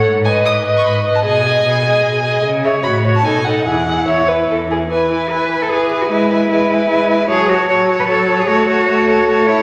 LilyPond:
<<
  \new Staff \with { instrumentName = "Violin" } { \time 3/4 \key e \major \tempo 4 = 150 r8 gis''8 dis'''8. cis'''16 b''8. a''16 | gis''2. | r8 e''8 b''8. a''16 gis''8 fis''8 | fis''4 e''4 r4 |
gis''8 gis''8 gis''8 gis''8 gis''8 gis''8 | gis''8 gis''8 gis''8 gis''8 gis''8 gis''8 | a''8 a''8 a''8 a''8 a''8 a''8 | a''8 a''8 a''8 a''8 a''8 a''8 | }
  \new Staff \with { instrumentName = "Violin" } { \time 3/4 \key e \major r8 dis''4 dis''4 dis''8 | dis''8 dis''4 dis''4 dis''8 | r8 cis''8 cis''8 cis''8 a'8 a'8 | gis'8 gis'8 cis''8 b'8 a'8 gis'8 |
b'8 b'8 b'8 b'8 b'8 b'8 | b'8 b'8 b'8 b'8 b'8 b'8 | cis''8 cis''8 cis''8 cis''8 cis''8 cis''8 | cis''8 cis''8 cis''8 cis''8 cis''8 cis''8 | }
  \new Staff \with { instrumentName = "Cello" } { \time 3/4 \key e \major gis,4 gis,4 gis,4 | b,4 b,4 b,4 | cis4 a,4 b,4 | e,4 e,4 e,4 |
r8 e'8 b'8. a'16 gis'8. fis'16 | e'2. | gis'8 fis'8 cis''8. b'16 a'8. gis'16 | fis'2~ fis'8 e'8 | }
  \new Staff \with { instrumentName = "Viola" } { \time 3/4 \key e \major r8 b'4 b'4 b'8 | gis'8 gis'4 gis'4 gis'8 | r8 gis'8 fis'8 fis'8 dis'8 dis'8 | e'8 e'4 e'4 e'8 |
e4 e4 e4 | gis4 gis4 gis4 | fis4 fis4 fis4 | a4 a4 a4 | }
>>